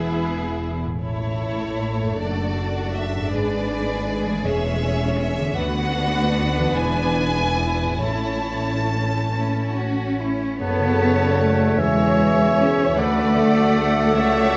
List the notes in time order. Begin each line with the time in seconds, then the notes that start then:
Already playing: E1 E2 E3 B3 E4 G#4 E5
0.85 A2
0.89 A3
0.94 E4
0.98 A4
1.03 A1 A2 A3 E4 A4 C#5
2.01 F#2
2.05 A3
2.10 D4
2.14 A4
2.19 F#1 F#2 D4 F#4 D5
2.94 E5
3.15 G#2
3.20 B3
3.24 D4
3.28 G#3 G#4 D5
3.33 G#1 G#2 G#4 B4
4.25 E3
4.30 G#3
4.35 C#4
4.40 G#4
4.44 E1 E2 C#4 C#5 E5
5.20 E5
5.39 D3
5.43 B3
5.47 D4
5.52 D2 F#4 F#5
5.57 B3 D4 F#4 B4
6.58 E3
6.62 B3
6.67 D4
6.71 E2 E4 G#5
6.76 E1 E4
7.83 A2
7.88 A3
7.92 C#4
7.97 A1 E4
8.01 A2 A3 C#4 C#5 A5
9.31 C#4 E4
9.74 F#4
10.18 E4
10.59 F#1 F#2 C#3 B3 A4 C#5 F#5 A5
10.79 C#3
10.99 A3
11.19 C#4 D5
11.39 A3 A4
11.77 E1 E2 E3 G#3 C#5 E5 G#5
11.98 G#3
12.18 C#4
12.58 C#4 G#4
12.78 C#5
12.96 D2 D3 A3 A4 B4 D5 F#5
13.00 F#4
13.17 D4
13.36 F#3 A4
13.55 F#4
13.74 A4
13.94 F#4
14.14 C#2 A3 C#5 E5 F#5
14.18 F#4
14.34 A5